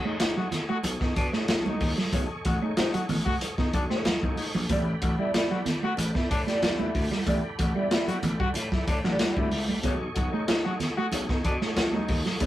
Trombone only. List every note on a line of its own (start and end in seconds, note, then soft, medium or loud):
0.05 0.17 D#4 medium
0.20 0.34 D#4 medium
0.37 0.46 F#4 medium
0.69 0.78 F#4 loud
1.01 1.13 D#4 medium
1.16 1.27 D4 medium
1.66 1.92 D#4 medium
2.45 2.59 F#4 loud
2.62 2.74 D#4 medium
2.76 2.90 D#4 loud
2.94 3.03 F#4 medium
3.25 3.35 F#4 loud
3.58 3.70 D#4 loud
3.74 3.84 D4 loud
4.23 4.48 D#4 medium
5.02 5.15 F#4 medium
5.19 5.31 E4 loud
5.34 5.48 E4 loud
5.51 5.60 F#4 medium
5.84 5.93 F#4 loud
6.16 6.28 E4 medium
6.30 6.41 D4 loud
6.79 7.05 E4 medium
7.58 7.72 F#4 medium
7.76 7.88 E4 medium
7.91 8.05 E4 loud
8.08 8.17 F#4 loud
8.40 8.49 F#4 loud
8.73 8.85 E4 medium
8.88 8.98 D4 medium
9.37 9.62 E4 medium
10.15 10.29 F#4 loud
10.32 10.45 D#4 loud
10.48 10.62 D#4 medium
10.64 10.74 F#4 loud
10.97 11.06 F#4 loud
11.29 11.41 D#4 medium
11.44 11.55 D4 medium
11.93 12.19 D#4 loud